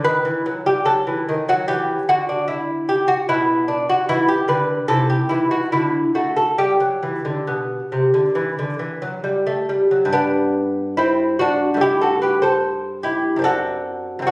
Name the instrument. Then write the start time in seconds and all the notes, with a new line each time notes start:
lute
0.04 D#3 B4
0.25 E3
0.46 F#3
0.66 G3 G4
0.86 F#3 A4
1.07 E3
1.29 D#3
1.49 F#3 F#4
1.68 E3 G4
2.09 D3 F#4
2.29 D4
2.48 E4
2.89 G4
3.08 F#4
3.29 B2 E4
3.68 D4
3.89 F#4
4.09 E3 E4
4.28 G4
4.48 D3 B4
4.88 C3 E4 A4
5.10 G4
5.29 E3 E4
5.51 F#4
5.72 D3 E4
6.15 A3 F#4
6.36 A4
6.58 G3 G4
6.80 F#3
7.03 E3
7.25 D3
7.47 B2
7.92 C3
8.14 D3
8.35 E3
8.59 D3
8.79 E3
9.02 F#3
9.24 G3
9.47 A3
9.69 G3
9.91 F#3
10.05 G2
10.13 B3 D4
10.97 C4 E4
11.39 D4 F#4
11.74 G2 A3
11.81 E4 G4
12.01 F#4 A4
12.22 G4 B4
12.42 A4 C5
13.03 E4 G4
13.36 F#2 C4
13.42 D4 F#4 A4
14.19 F#2 C4
14.27 D4 F#4